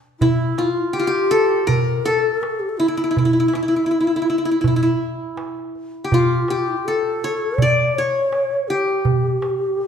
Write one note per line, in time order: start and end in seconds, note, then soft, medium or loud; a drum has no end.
0.20 0.94 E4 medium
0.20 0.64 E4 medium
0.20 darbuka dum medium
0.58 0.99 F4 medium
0.58 darbuka tek medium
0.93 1.07 G4 medium
0.99 2.34 F4 medium
1.07 2.33 G4 medium
1.07 1.63 G4 medium
1.13 darbuka ka soft
1.31 1.73 A4 loud
1.31 darbuka ka soft
1.67 2.11 A#4 medium
1.67 2.06 A#4 medium
1.67 darbuka dum medium
2.05 2.43 A4 medium
2.05 3.23 A4 medium
2.42 2.51 A#4 medium
2.42 darbuka tek medium
2.50 2.62 A4 medium
2.60 2.71 G4 medium
2.60 darbuka ka soft
2.69 2.79 A4 medium
2.78 4.99 E4 medium
2.78 2.88 E4 medium
2.78 darbuka ka soft
2.88 2.97 E4 medium
2.97 3.03 E4 medium
3.04 3.10 E4 soft
3.11 3.18 E4 medium
3.17 3.25 E4 soft
3.17 darbuka dum medium
3.25 3.33 E4 medium
3.33 3.39 E4 soft
3.40 3.48 E4 medium
3.48 3.55 E4 soft
3.53 3.62 E4 medium
3.53 darbuka tek medium
3.63 3.68 E4 soft
3.68 3.76 E4 soft
3.76 3.86 E4 soft
3.86 3.91 E4 medium
3.91 4.00 E4 soft
4.01 4.07 E4 soft
4.07 4.16 E4 soft
4.07 darbuka ka soft
4.16 4.21 E4 medium
4.22 4.29 E4 soft
4.27 4.38 E4 medium
4.27 darbuka ka soft
4.38 4.45 E4 soft
4.45 4.51 E4 medium
4.51 4.61 E4 soft
4.61 4.67 E4 medium
4.61 darbuka dum medium
4.68 4.76 E4 medium
4.76 4.82 E4 medium
4.83 6.20 E4 medium
5.37 darbuka tek medium
5.57 darbuka ka soft
5.75 darbuka ka soft
6.04 6.50 G4 medium
6.10 6.50 F4 medium
6.10 7.48 F4 medium
6.10 darbuka dum loud
6.48 6.60 G4 medium
6.48 7.76 G4 medium
6.48 darbuka tek medium
6.59 6.69 F4 medium
6.68 6.79 E4 medium
6.77 6.87 F4 medium
6.85 7.60 A4 medium
6.85 8.05 A4 medium
7.03 darbuka ka soft
7.22 7.68 C#5 medium
7.22 darbuka ka soft
7.58 7.97 D5 medium
7.58 8.04 D5 loud
7.58 darbuka dum medium
7.96 8.69 C#5 medium
7.96 9.01 C#5 medium
8.32 darbuka tek medium
8.51 darbuka ka soft
8.68 9.87 G4 medium
8.68 darbuka ka soft
9.05 darbuka dum medium
9.42 darbuka tek medium
9.62 darbuka ka soft
9.80 darbuka ka soft